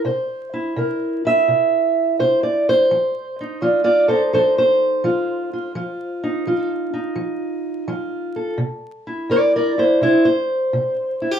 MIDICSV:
0, 0, Header, 1, 2, 480
1, 0, Start_track
1, 0, Tempo, 711744
1, 39, Time_signature, 4, 2, 24, 8
1, 7685, End_track
2, 0, Start_track
2, 0, Title_t, "Steel-string acoustic guitar"
2, 0, Program_c, 0, 25
2, 31, Note_on_c, 0, 48, 73
2, 35, Note_on_c, 0, 72, 46
2, 361, Note_on_c, 0, 64, 45
2, 484, Note_off_c, 0, 48, 0
2, 516, Note_on_c, 0, 48, 73
2, 526, Note_on_c, 0, 70, 43
2, 834, Note_off_c, 0, 64, 0
2, 842, Note_on_c, 0, 64, 40
2, 851, Note_off_c, 0, 72, 0
2, 854, Note_on_c, 0, 76, 104
2, 966, Note_off_c, 0, 48, 0
2, 998, Note_on_c, 0, 48, 69
2, 1447, Note_off_c, 0, 48, 0
2, 1479, Note_on_c, 0, 48, 64
2, 1480, Note_off_c, 0, 76, 0
2, 1483, Note_on_c, 0, 72, 81
2, 1637, Note_off_c, 0, 72, 0
2, 1640, Note_on_c, 0, 74, 73
2, 1800, Note_off_c, 0, 74, 0
2, 1815, Note_on_c, 0, 72, 99
2, 1928, Note_off_c, 0, 48, 0
2, 1942, Note_off_c, 0, 64, 0
2, 1944, Note_off_c, 0, 70, 0
2, 1963, Note_on_c, 0, 53, 76
2, 2296, Note_on_c, 0, 63, 49
2, 2410, Note_off_c, 0, 53, 0
2, 2440, Note_on_c, 0, 65, 76
2, 2444, Note_on_c, 0, 53, 62
2, 2448, Note_off_c, 0, 72, 0
2, 2448, Note_on_c, 0, 74, 87
2, 2582, Note_off_c, 0, 65, 0
2, 2585, Note_off_c, 0, 74, 0
2, 2590, Note_on_c, 0, 65, 72
2, 2593, Note_on_c, 0, 74, 93
2, 2753, Note_on_c, 0, 69, 80
2, 2755, Note_off_c, 0, 65, 0
2, 2756, Note_off_c, 0, 74, 0
2, 2759, Note_on_c, 0, 72, 85
2, 2766, Note_off_c, 0, 63, 0
2, 2769, Note_on_c, 0, 63, 41
2, 2836, Note_off_c, 0, 69, 0
2, 2891, Note_off_c, 0, 53, 0
2, 2919, Note_off_c, 0, 72, 0
2, 2922, Note_on_c, 0, 69, 70
2, 2929, Note_on_c, 0, 72, 87
2, 2930, Note_on_c, 0, 53, 74
2, 2972, Note_off_c, 0, 69, 0
2, 3084, Note_off_c, 0, 72, 0
2, 3091, Note_on_c, 0, 72, 91
2, 3373, Note_off_c, 0, 53, 0
2, 3399, Note_on_c, 0, 53, 76
2, 3404, Note_on_c, 0, 65, 52
2, 3723, Note_off_c, 0, 65, 0
2, 3732, Note_on_c, 0, 65, 45
2, 3847, Note_off_c, 0, 53, 0
2, 3864, Note_off_c, 0, 63, 0
2, 3866, Note_off_c, 0, 65, 0
2, 3879, Note_on_c, 0, 53, 73
2, 3883, Note_on_c, 0, 65, 51
2, 4206, Note_on_c, 0, 63, 49
2, 4327, Note_off_c, 0, 53, 0
2, 4359, Note_off_c, 0, 65, 0
2, 4363, Note_on_c, 0, 53, 68
2, 4368, Note_on_c, 0, 65, 46
2, 4525, Note_off_c, 0, 72, 0
2, 4669, Note_off_c, 0, 63, 0
2, 4678, Note_on_c, 0, 63, 50
2, 4809, Note_off_c, 0, 53, 0
2, 4826, Note_on_c, 0, 53, 73
2, 5280, Note_off_c, 0, 53, 0
2, 5306, Note_off_c, 0, 65, 0
2, 5312, Note_on_c, 0, 53, 73
2, 5315, Note_on_c, 0, 65, 43
2, 5638, Note_on_c, 0, 69, 46
2, 5763, Note_off_c, 0, 53, 0
2, 5777, Note_off_c, 0, 65, 0
2, 5778, Note_off_c, 0, 63, 0
2, 5784, Note_on_c, 0, 48, 72
2, 5797, Note_off_c, 0, 69, 0
2, 6116, Note_on_c, 0, 64, 45
2, 6239, Note_off_c, 0, 48, 0
2, 6269, Note_on_c, 0, 48, 67
2, 6278, Note_on_c, 0, 70, 78
2, 6283, Note_on_c, 0, 74, 95
2, 6329, Note_off_c, 0, 70, 0
2, 6440, Note_off_c, 0, 74, 0
2, 6446, Note_on_c, 0, 70, 80
2, 6450, Note_on_c, 0, 74, 85
2, 6547, Note_off_c, 0, 70, 0
2, 6592, Note_off_c, 0, 64, 0
2, 6594, Note_on_c, 0, 64, 45
2, 6603, Note_on_c, 0, 72, 85
2, 6604, Note_off_c, 0, 74, 0
2, 6721, Note_off_c, 0, 48, 0
2, 6753, Note_on_c, 0, 48, 77
2, 6755, Note_off_c, 0, 64, 0
2, 6760, Note_off_c, 0, 72, 0
2, 6763, Note_on_c, 0, 64, 89
2, 6767, Note_on_c, 0, 72, 89
2, 6904, Note_off_c, 0, 72, 0
2, 6912, Note_on_c, 0, 72, 88
2, 6920, Note_off_c, 0, 64, 0
2, 7203, Note_off_c, 0, 48, 0
2, 7237, Note_on_c, 0, 48, 74
2, 7564, Note_on_c, 0, 64, 45
2, 7629, Note_off_c, 0, 64, 0
2, 7629, Note_on_c, 0, 67, 37
2, 7685, Note_off_c, 0, 48, 0
2, 7685, Note_off_c, 0, 67, 0
2, 7685, Note_off_c, 0, 72, 0
2, 7685, End_track
0, 0, End_of_file